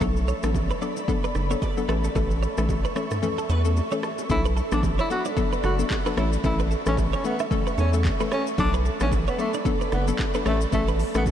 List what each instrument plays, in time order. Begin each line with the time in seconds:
Already playing: ambient pad A4
0.01 analog synth bass B1, synth pluck F#3 B3 D4 A4, clean electric guitar A4, ambient pad D5 B5, kick, low conga, shaker
0.16 shaker
0.28 clean electric guitar C#5, shaker
0.43 analog synth bass A1, synth pluck F#3 B3 D4 A4, cross-stick, low bongo, shaker
0.54 kick, high bongo, low conga, shaker
0.70 clean electric guitar B4, shaker
0.81 synth pluck F#3 B3 D4 A4, clean electric guitar D5, shaker
0.97 low bongo, shaker
1.08 synth pluck F#3 B3 D4 A4, kick, low conga, shaker
1.24 clean electric guitar B4, shaker
1.35 analog synth bass F#1, cross-stick, low bongo, shaker
1.50 synth pluck F#3 B3 D4 A4, clean electric guitar C#5, shaker
1.62 clean electric guitar D5, kick, high bongo, shaker
1.77 synth pluck F#3 B3 D4 A4, shaker
1.88 analog synth bass A1, synth pluck E3 A3 C#4 A4, clean electric guitar B4, ambient pad E5 C#6, cross-stick, high bongo, shaker
2.04 clean electric guitar A4, high bongo, shaker
2.15 analog synth bass A1, synth pluck E3 A3 C#4 A4, clean electric guitar A4, kick, low conga, shaker
2.31 shaker
2.43 clean electric guitar C#5, shaker
2.58 analog synth bass A1, synth pluck E3 A3 C#4 A4, cross-stick, low bongo, shaker
2.69 kick, high bongo, low conga, shaker
2.85 clean electric guitar B4, shaker
2.96 synth pluck E3 A3 C#4 A4, clean electric guitar C#5, cross-stick, shaker
3.11 cross-stick, mid tom, low bongo, shaker
3.22 synth pluck E3 A3 C#4 A4, low conga, shaker
3.38 clean electric guitar A4, shaker
3.49 analog synth bass E2, clean electric guitar B4, low bongo, shaker
3.65 synth pluck E3 A3 C#4 A4, shaker
3.77 high bongo, shaker
3.91 synth pluck E3 A3 C#4 A4, clean electric guitar C#5, shaker
4.03 clean electric guitar A4, cross-stick, high bongo, shaker
4.18 high bongo, shaker
4.30 analog synth bass B1, synth pluck F#3 B3 D4 A4, tenor saxophone E4, ambient pad A4 D5 B5, kick, low conga, shaker
4.45 clean electric guitar B4, shaker
4.57 clean electric guitar A4, shaker
4.72 analog synth bass A1, synth pluck F#3 B3 D4 A4, tenor saxophone D4, cross-stick, low bongo, shaker
4.83 kick, high bongo, low conga, shaker
4.99 tenor saxophone E4, clean electric guitar C#5, shaker
5.10 synth pluck F#3 B3 D4 A4, tenor saxophone F#4, shaker
5.25 clean electric guitar D5, low bongo, shaker
5.37 synth pluck F#3 B3 D4 A4, kick, low conga, shaker
5.53 clean electric guitar B4, shaker
5.64 analog synth bass F#1, tenor saxophone F#4, clean electric guitar A4, cross-stick, low bongo, shaker
5.79 synth pluck F#3 B3 D4 A4, shaker
5.91 kick, clap, high bongo, shaker
6.06 synth pluck F#3 B3 D4 A4, clean electric guitar B4, shaker
6.17 analog synth bass A1, synth pluck E3 A3 C#4 A4, tenor saxophone E4, ambient pad A4 E5 C#6, clean electric guitar C#5, cross-stick, high bongo, shaker
6.33 shaker
6.44 analog synth bass A1, synth pluck E3 A3 C#4 A4, tenor saxophone E4, kick, low conga, shaker
6.59 clean electric guitar B4, shaker
6.71 clean electric guitar A4, shaker
6.86 analog synth bass A1, synth pluck E3 A3 C#4 A4, tenor saxophone C#4, cross-stick, low bongo, shaker
6.97 kick, high bongo, low conga, shaker
7.13 tenor saxophone C#4, clean electric guitar C#5, shaker
7.24 synth pluck E3 A3 C#4 A4, tenor saxophone B3, shaker
7.40 clean electric guitar E5, cross-stick, low bongo, shaker
7.51 synth pluck E3 A3 C#4 A4, kick, low conga, shaker
7.67 clean electric guitar B4, shaker
7.78 analog synth bass E2, tenor saxophone C#4, clean electric guitar A4, low bongo, shaker
7.93 synth pluck E3 A3 C#4 A4, shaker
8.05 kick, clap, high bongo, shaker
8.20 synth pluck E3 A3 C#4 A4, clean electric guitar B4, shaker
8.32 tenor saxophone C#4, clean electric guitar C#5, cross-stick, high bongo, shaker
8.47 shaker
8.58 analog synth bass B1, synth pluck F#3 B3 D4 A4, tenor saxophone D4, ambient pad D5 B5, kick, low conga, shaker
8.74 clean electric guitar B4, shaker
8.85 clean electric guitar A4, shaker
9.00 analog synth bass A1, synth pluck F#3 B3 D4 A4, tenor saxophone C#4, cross-stick, low bongo, shaker
9.12 kick, high bongo, low conga, shaker
9.27 tenor saxophone B3, clean electric guitar C#5, shaker
9.38 synth pluck F#3 B3 D4 A4, tenor saxophone A3, shaker
9.54 clean electric guitar D5, low bongo, shaker
9.65 synth pluck F#3 B3 D4 A4, kick, low conga, shaker
9.81 clean electric guitar B4, shaker
9.92 analog synth bass F#1, tenor saxophone B3, clean electric guitar A4, cross-stick, low bongo, shaker
10.07 synth pluck F#3 B3 D4 A4, shaker
10.19 kick, clap, high bongo, shaker
10.34 synth pluck F#3 B3 D4 A4, clean electric guitar B4, shaker
10.45 analog synth bass A1, synth pluck E3 A3 C#4 A4, tenor saxophone A3, clean electric guitar C#5, ambient pad E5 C#6, cross-stick, high bongo, shaker
10.61 shaker
10.72 analog synth bass A1, synth pluck E3 A3 C#4 A4, tenor saxophone A3, kick, low conga, shaker
10.88 clean electric guitar B4, shaker
10.99 clean electric guitar A4, open hi-hat, shaker
11.15 analog synth bass A1, synth pluck E3 A3 C#4 A4, tenor saxophone B3, cross-stick, low bongo, shaker
11.26 kick, high bongo, low conga, shaker